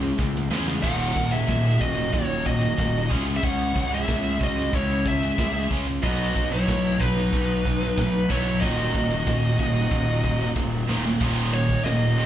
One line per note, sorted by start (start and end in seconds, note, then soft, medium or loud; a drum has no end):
0.00 0.11 C#2 medium
0.00 0.48 C#3 loud
0.00 0.17 C#3 medium
0.00 0.49 G#3 loud
0.00 0.16 G#3 medium
0.00 0.49 C#4 loud
0.00 0.49 E4 loud
0.00 0.50 G#4 loud
0.18 0.47 C#2 medium
0.18 0.48 C#3 medium
0.18 0.47 G#3 medium
0.18 kick loud
0.18 snare medium
0.36 snare medium
0.50 0.79 E2 medium
0.50 0.65 C#3 medium
0.50 0.82 C#3 medium
0.50 0.65 G#3 loud
0.50 0.82 G#3 medium
0.50 0.66 C#4 medium
0.50 0.82 C#4 medium
0.50 0.82 E4 medium
0.50 0.81 G#4 medium
0.50 snare loud
0.67 0.83 C#3 medium
0.67 0.83 G#3 medium
0.67 snare medium
0.82 1.12 D#1 medium
0.82 3.08 D#2 loud
0.82 1.14 D#2 medium
0.82 3.08 A#2 loud
0.82 1.13 A#2 medium
0.82 3.08 D#3 loud
0.82 1.14 D#3 loud
0.82 3.09 F#3 loud
0.82 3.09 A#3 loud
0.82 3.09 D#4 loud
0.82 1.29 A#4 loud
0.82 1.32 F#5 loud
0.82 kick loud
0.82 china medium
0.82 crash loud
1.15 1.44 D#1 medium
1.15 1.31 D#2 medium
1.15 1.31 A#2 medium
1.15 kick medium
1.32 1.46 D#2 medium
1.32 1.46 A#2 medium
1.32 1.78 G#4 medium
1.32 1.82 E5 loud
1.47 1.77 D#1 medium
1.47 1.77 D#2 medium
1.47 1.77 A#2 medium
1.47 kick loud
1.47 snare loud
1.47 china medium
1.79 2.09 D#1 medium
1.79 1.95 D#2 medium
1.79 1.94 A#2 medium
1.79 2.11 F#4 medium
1.79 2.13 D#5 medium
1.79 kick medium
1.95 2.11 D#2 medium
1.95 2.11 A#2 medium
2.12 2.70 D#1 medium
2.12 2.42 D#2 medium
2.12 2.42 A#2 medium
2.12 2.44 F#4 medium
2.12 2.44 C#5 medium
2.12 kick loud
2.12 china medium
2.46 2.61 D#2 medium
2.46 2.60 A#2 medium
2.46 3.07 F#4 medium
2.46 3.07 D#5 medium
2.46 kick medium
2.61 2.77 D#2 medium
2.61 2.78 A#2 medium
2.78 3.07 D#1 loud
2.78 3.08 D#2 medium
2.78 3.08 A#2 medium
2.78 kick loud
2.78 snare loud
2.78 china medium
3.09 3.39 C#2 medium
3.09 5.35 C#3 medium
3.09 3.25 C#3 medium
3.09 5.35 G#3 medium
3.09 3.25 G#3 medium
3.09 5.35 C#4 medium
3.09 3.26 C#4 loud
3.09 5.36 E4 loud
3.09 5.36 G#4 loud
3.09 kick loud
3.27 3.44 C#3 medium
3.27 3.43 G#3 medium
3.36 3.43 G#4 medium
3.36 3.43 E5 medium
3.43 3.72 C#2 medium
3.43 3.73 C#3 medium
3.43 3.73 G#3 medium
3.43 3.89 C#5 medium
3.43 3.89 F#5 loud
3.43 kick loud
3.43 china medium
3.76 4.04 C#2 loud
3.76 3.92 C#3 medium
3.76 3.92 G#3 medium
3.76 kick medium
3.93 4.09 C#3 medium
3.93 4.09 G#3 medium
3.93 4.38 G#4 medium
3.93 4.38 E5 loud
4.08 4.37 C#2 medium
4.08 4.38 C#3 medium
4.08 4.38 G#3 medium
4.08 kick loud
4.08 snare loud
4.08 china medium
4.41 4.69 C#2 medium
4.41 4.58 C#3 medium
4.41 4.57 G#3 medium
4.41 4.71 F#4 medium
4.41 4.72 D#5 medium
4.41 kick medium
4.59 4.73 C#3 medium
4.59 4.74 G#3 loud
4.73 5.30 C#2 medium
4.73 5.03 C#3 medium
4.73 5.03 G#3 medium
4.73 5.03 E4 medium
4.73 5.07 C#5 medium
4.73 kick loud
4.73 china medium
5.06 5.23 C#3 medium
5.06 5.22 G#3 medium
5.06 5.66 G#4 medium
5.06 5.67 E5 medium
5.06 kick medium
5.23 5.38 C#3 medium
5.23 5.38 G#3 medium
5.36 5.66 C#2 loud
5.36 5.67 C#3 medium
5.36 5.68 G#3 medium
5.36 5.67 G#3 medium
5.36 5.68 C#4 medium
5.36 5.68 E4 loud
5.36 5.68 G#4 loud
5.36 kick loud
5.36 snare loud
5.36 china medium
5.71 5.99 C#2 medium
5.71 5.84 C#3 medium
5.71 5.85 G#3 medium
5.71 5.85 C#4 loud
5.71 kick medium
5.88 6.03 C#3 medium
5.88 6.03 G#3 medium
6.02 6.31 B1 medium
6.02 8.27 B2 loud
6.02 6.34 B2 medium
6.02 8.32 F#3 loud
6.02 6.34 F#3 loud
6.02 8.28 B3 loud
6.02 6.34 B3 loud
6.02 8.30 D#4 loud
6.02 6.47 F#4 loud
6.02 8.29 F#4 loud
6.02 6.52 D#5 loud
6.02 kick loud
6.02 china medium
6.36 6.64 B1 medium
6.36 6.52 B2 medium
6.36 6.52 F#3 medium
6.36 kick medium
6.50 6.68 B2 medium
6.50 6.68 F#3 medium
6.50 6.96 E4 loud
6.50 7.02 C#5 loud
6.68 6.96 B1 medium
6.68 6.97 B2 medium
6.68 6.97 F#3 medium
6.68 kick loud
6.68 snare loud
6.68 china medium
6.99 7.28 B1 medium
6.99 7.16 F#3 medium
6.99 8.24 D#4 medium
6.99 8.33 B4 loud
6.99 kick medium
7.03 7.17 B2 medium
7.18 7.33 B2 medium
7.18 7.33 F#3 medium
7.33 7.89 B1 medium
7.33 7.62 B2 medium
7.33 7.62 F#3 medium
7.33 kick loud
7.33 china medium
7.65 7.81 B2 medium
7.65 7.82 F#3 medium
7.65 kick medium
7.83 7.97 B2 medium
7.83 7.98 F#3 medium
7.98 8.26 B1 loud
7.98 8.26 B2 medium
7.98 8.27 F#3 medium
7.98 kick loud
7.98 snare loud
7.98 china medium
8.29 8.58 B1 medium
8.29 8.43 B2 medium
8.29 8.61 B2 medium
8.29 8.44 F#3 medium
8.29 8.62 F#3 medium
8.29 8.44 B3 loud
8.29 8.60 B3 medium
8.29 8.63 D#4 medium
8.29 8.59 E4 medium
8.29 8.64 F#4 medium
8.29 8.61 C#5 loud
8.29 kick medium
8.47 8.62 B2 medium
8.47 8.62 F#3 medium
8.61 8.90 D#1 medium
8.61 10.86 D#2 medium
8.61 8.92 D#2 medium
8.61 10.86 A#2 medium
8.61 8.92 A#2 medium
8.61 10.86 D#3 loud
8.61 8.93 D#3 medium
8.61 10.87 F#3 loud
8.61 10.87 A#3 loud
8.61 10.87 D#4 loud
8.61 10.52 F#4 medium
8.61 10.51 D#5 medium
8.61 kick loud
8.61 china medium
8.95 9.23 D#1 loud
8.95 9.10 D#2 medium
8.95 9.09 A#2 medium
8.95 kick medium
9.10 9.25 D#2 medium
9.10 9.26 A#2 medium
9.27 9.55 D#1 medium
9.27 9.55 D#2 medium
9.27 9.55 A#2 medium
9.27 kick loud
9.27 snare loud
9.27 china medium
9.59 9.87 D#1 medium
9.59 9.74 D#2 medium
9.59 9.74 A#2 medium
9.59 kick medium
9.76 9.90 D#2 medium
9.76 9.91 A#2 medium
9.91 10.48 D#1 medium
9.91 10.20 D#2 medium
9.91 10.20 A#2 medium
9.91 kick loud
9.91 china medium
10.24 10.39 D#2 medium
10.24 10.39 A#2 medium
10.24 kick medium
10.40 10.54 D#2 medium
10.40 10.55 A#2 medium
10.55 10.84 D#1 loud
10.55 10.84 D#2 medium
10.55 10.85 A#2 medium
10.55 kick loud
10.55 snare medium
10.88 11.20 D#1 medium
10.88 11.02 D#2 medium
10.88 11.18 D#2 medium
10.88 11.03 A#2 medium
10.88 11.19 A#2 medium
10.88 11.03 D#3 medium
10.88 11.19 D#3 medium
10.88 11.19 F#3 medium
10.88 11.19 A#3 medium
10.88 11.18 D#4 loud
10.88 snare medium
11.04 11.19 D#2 medium
11.04 11.19 A#2 medium
11.04 snare medium
11.20 11.73 D#1 loud
11.20 12.26 D#2 loud
11.20 11.50 D#2 medium
11.20 11.50 A#2 medium
11.20 12.26 A#2 medium
11.20 11.51 D#3 loud
11.20 12.26 D#3 loud
11.20 12.26 F#3 loud
11.20 12.26 A#3 loud
11.20 12.26 D#4 loud
11.20 kick loud
11.20 crash loud
11.20 china medium
11.53 11.82 D#2 medium
11.53 11.82 A#2 medium
11.53 11.84 C#5 medium
11.69 kick medium
11.85 12.26 D#1 medium
11.85 12.14 D#2 medium
11.85 12.14 A#2 medium
11.85 12.26 D#5 medium
11.85 snare loud
11.85 china medium
12.16 12.26 D#2 medium
12.16 12.26 A#2 medium
12.16 12.26 D#3 loud